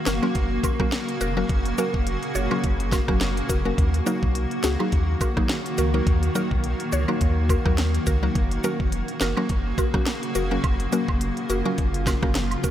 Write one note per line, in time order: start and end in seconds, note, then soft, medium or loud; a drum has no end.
0.00 3.74 C#3 medium
0.00 8.31 A#3 medium
0.00 8.31 F#4 medium
0.06 0.20 F#1 medium
0.06 0.13 F#4 medium
0.06 0.13 A#4 medium
0.06 snare loud
0.06 closed hi-hat medium
0.06 cabasa medium
0.22 0.33 F#3 medium
0.22 0.33 A#3 medium
0.22 0.33 C#4 medium
0.22 0.33 F#4 medium
0.22 0.33 A#4 medium
0.22 high woodblock medium
0.35 0.59 F#1 loud
0.35 kick medium
0.35 closed hi-hat medium
0.63 0.70 F#4 medium
0.63 0.70 A#4 loud
0.63 kick loud
0.63 closed hi-hat medium
0.63 cabasa medium
0.63 high woodblock medium
0.80 0.90 F#3 medium
0.80 0.90 A#3 medium
0.80 0.90 C#4 medium
0.80 0.90 F#4 medium
0.80 0.90 A#4 medium
0.80 kick loud
0.80 cross-stick medium
0.92 snare loud
0.92 closed hi-hat medium
1.09 closed hi-hat medium
1.21 1.44 F1 medium
1.21 1.27 F#4 medium
1.21 1.28 A#4 loud
1.21 closed hi-hat medium
1.21 cabasa medium
1.37 1.47 F#3 medium
1.37 1.47 A#3 medium
1.37 1.47 C#4 medium
1.37 1.47 F#4 medium
1.37 1.47 A#4 medium
1.49 1.73 F#1 loud
1.49 kick loud
1.49 closed hi-hat medium
1.66 closed hi-hat medium
1.78 1.91 F#3 medium
1.78 1.91 A#3 medium
1.78 1.91 C#4 medium
1.78 1.91 F#4 medium
1.78 1.91 A#4 loud
1.78 closed hi-hat medium
1.78 cabasa medium
1.94 2.17 F1 loud
1.94 kick medium
2.07 closed hi-hat medium
2.23 closed hi-hat medium
2.35 2.48 F#1 loud
2.35 2.42 F#4 medium
2.35 2.42 C#5 loud
2.35 closed hi-hat medium
2.35 cabasa medium
2.51 2.61 F#3 medium
2.51 2.61 A#3 medium
2.51 2.61 C#4 medium
2.51 2.61 F#4 medium
2.51 2.61 A#4 medium
2.51 high woodblock medium
2.64 3.00 F#1 loud
2.64 kick medium
2.64 closed hi-hat medium
2.80 closed hi-hat medium
2.92 2.99 F#4 medium
2.92 2.99 A#4 loud
2.92 kick loud
2.92 snare medium
2.92 closed hi-hat medium
2.92 cabasa medium
2.92 high woodblock medium
3.08 3.42 F#1 medium
3.08 3.18 F#3 medium
3.08 3.18 A#3 medium
3.08 3.19 C#4 medium
3.08 3.19 F#4 medium
3.08 3.19 A#4 medium
3.08 kick loud
3.08 cross-stick loud
3.21 snare loud
3.21 closed hi-hat medium
3.37 closed hi-hat medium
3.49 3.73 F1 medium
3.49 3.56 F#4 medium
3.49 3.56 A#4 medium
3.49 kick loud
3.49 closed hi-hat medium
3.49 cabasa medium
3.65 3.76 F#3 medium
3.65 3.76 A#3 medium
3.65 3.76 C#4 medium
3.65 3.76 F#4 medium
3.65 3.76 A#4 medium
3.78 4.01 D#2 loud
3.78 8.31 D#3 medium
3.78 kick loud
3.78 closed hi-hat medium
3.94 closed hi-hat medium
4.06 4.19 F#3 medium
4.06 4.19 A#3 medium
4.06 4.19 D#4 medium
4.06 4.19 F#4 medium
4.06 4.20 A#4 loud
4.06 closed hi-hat medium
4.06 cabasa medium
4.23 4.46 B1 loud
4.23 kick medium
4.35 closed hi-hat medium
4.51 closed hi-hat medium
4.63 4.77 C#2 medium
4.63 4.70 F#4 medium
4.63 4.70 G#4 loud
4.63 snare loud
4.63 closed hi-hat medium
4.63 cabasa medium
4.79 4.90 F#3 medium
4.79 4.90 A#3 medium
4.79 4.90 D#4 medium
4.79 4.90 F#4 medium
4.79 4.90 G#4 medium
4.79 high woodblock medium
4.92 5.16 D#2 loud
4.92 kick medium
4.92 closed hi-hat medium
5.21 5.27 F#4 medium
5.21 5.28 A#4 loud
5.21 kick loud
5.21 closed hi-hat medium
5.21 cabasa medium
5.21 high woodblock medium
5.37 5.47 F#3 medium
5.37 5.47 A#3 medium
5.37 5.47 D#4 medium
5.37 5.47 F#4 medium
5.37 5.47 G#4 medium
5.37 kick loud
5.37 cross-stick loud
5.49 snare loud
5.49 closed hi-hat medium
5.66 closed hi-hat medium
5.78 6.02 C#2 loud
5.78 5.84 F#4 medium
5.78 5.85 A#4 loud
5.78 closed hi-hat medium
5.78 cabasa medium
5.94 6.04 F#3 medium
5.94 6.04 A#3 medium
5.94 6.04 D#4 medium
5.94 6.04 F#4 medium
5.94 6.04 A#4 medium
6.07 6.30 D#2 loud
6.07 kick loud
6.07 closed hi-hat medium
6.23 closed hi-hat medium
6.35 6.48 F#3 medium
6.35 6.48 A#3 medium
6.35 6.48 D#4 medium
6.35 6.48 F#4 medium
6.35 6.48 A#4 loud
6.35 closed hi-hat medium
6.35 cabasa medium
6.51 6.75 B1 loud
6.51 kick medium
6.64 closed hi-hat medium
6.80 closed hi-hat medium
6.92 7.06 C#2 medium
6.92 6.99 F#4 medium
6.92 6.99 C#5 loud
6.92 closed hi-hat medium
6.92 cabasa medium
7.08 7.18 F#3 medium
7.08 7.18 A#3 medium
7.08 7.19 D#4 medium
7.08 7.19 F#4 medium
7.08 7.19 A#4 medium
7.08 high woodblock medium
7.21 7.57 D#2 loud
7.21 kick medium
7.21 closed hi-hat medium
7.49 7.56 F#4 medium
7.49 7.56 A#4 medium
7.49 kick medium
7.49 closed hi-hat medium
7.49 cabasa medium
7.49 high woodblock medium
7.65 7.99 D#2 medium
7.65 7.76 F#3 medium
7.65 7.76 A#3 medium
7.65 7.76 D#4 medium
7.65 7.76 F#4 medium
7.65 7.76 A#4 medium
7.65 kick loud
7.65 cross-stick medium
7.78 snare loud
7.78 closed hi-hat medium
7.95 closed hi-hat medium
8.06 8.30 C#2 loud
8.06 8.13 F#4 medium
8.06 8.13 A#4 medium
8.06 kick medium
8.06 closed hi-hat medium
8.06 cabasa medium
8.23 8.33 F#3 medium
8.23 8.33 A#3 medium
8.23 8.33 D#4 medium
8.23 8.33 F#4 medium
8.23 8.33 A#4 medium
8.35 8.59 F#1 loud
8.35 12.71 C#3 medium
8.35 12.71 A#3 medium
8.35 10.62 F#4 medium
8.35 kick loud
8.35 closed hi-hat medium
8.51 closed hi-hat medium
8.64 8.77 F#3 medium
8.64 8.77 A#3 medium
8.64 8.77 C#4 medium
8.64 8.77 F#4 medium
8.64 8.77 A#4 loud
8.64 closed hi-hat medium
8.64 cabasa medium
8.80 9.03 F1 medium
8.80 kick medium
8.92 closed hi-hat medium
9.08 closed hi-hat medium
9.21 9.34 F#1 medium
9.21 9.28 F#4 medium
9.21 9.28 A#4 loud
9.21 snare loud
9.21 closed hi-hat medium
9.21 cabasa medium
9.37 9.47 F#3 medium
9.37 9.47 A#3 medium
9.37 9.47 C#4 medium
9.37 9.47 F#4 medium
9.37 9.47 A#4 medium
9.37 high woodblock medium
9.49 9.73 F#1 loud
9.49 kick medium
9.49 closed hi-hat medium
9.78 9.85 F#4 medium
9.78 9.85 A#4 loud
9.78 kick loud
9.78 closed hi-hat medium
9.78 cabasa medium
9.78 high woodblock medium
9.94 10.04 F#3 medium
9.94 10.04 A#3 medium
9.94 10.04 C#4 medium
9.94 10.04 F#4 medium
9.94 10.04 A#4 medium
9.94 kick loud
9.94 cross-stick loud
10.06 snare loud
10.06 closed hi-hat medium
10.23 closed hi-hat medium
10.35 10.59 F1 medium
10.35 10.42 F#4 medium
10.35 10.42 A#4 medium
10.35 closed hi-hat medium
10.35 cabasa medium
10.51 10.61 F#3 medium
10.51 10.61 A#3 medium
10.51 10.61 C#4 medium
10.51 10.61 F#4 medium
10.51 10.62 A#4 medium
10.64 10.87 F#1 loud
10.64 12.71 F4 medium
10.64 kick loud
10.64 closed hi-hat medium
10.64 high woodblock medium
10.80 closed hi-hat medium
10.92 11.05 F#3 medium
10.92 11.05 A#3 medium
10.92 11.05 C#4 medium
10.92 11.05 F#4 medium
10.92 11.05 A#4 loud
10.92 closed hi-hat medium
10.92 cabasa medium
11.08 11.32 F1 loud
11.08 kick medium
11.08 high woodblock medium
11.21 closed hi-hat medium
11.37 closed hi-hat medium
11.50 11.63 F#1 medium
11.50 11.56 F#4 medium
11.50 11.56 A#4 loud
11.50 closed hi-hat medium
11.50 cabasa medium
11.65 11.76 F#3 medium
11.65 11.76 A#3 medium
11.65 11.76 C#4 medium
11.65 11.76 F#4 medium
11.65 11.76 A#4 medium
11.78 12.15 F#1 loud
11.78 kick medium
11.78 closed hi-hat medium
11.94 closed hi-hat medium
12.07 12.13 F#4 medium
12.07 12.13 A#4 medium
12.07 kick medium
12.07 snare medium
12.07 closed hi-hat medium
12.07 cabasa medium
12.07 high woodblock medium
12.22 12.56 F#1 medium
12.22 12.33 F#3 medium
12.22 12.33 A#3 medium
12.22 12.33 C#4 medium
12.22 12.33 F#4 medium
12.22 12.33 A#4 medium
12.22 kick loud
12.22 cross-stick loud
12.35 snare loud
12.35 closed hi-hat medium
12.51 closed hi-hat medium
12.51 high woodblock medium
12.63 12.71 F1 loud
12.63 12.70 F#4 medium
12.63 12.70 A#4 loud
12.63 kick medium
12.63 closed hi-hat medium
12.63 cabasa medium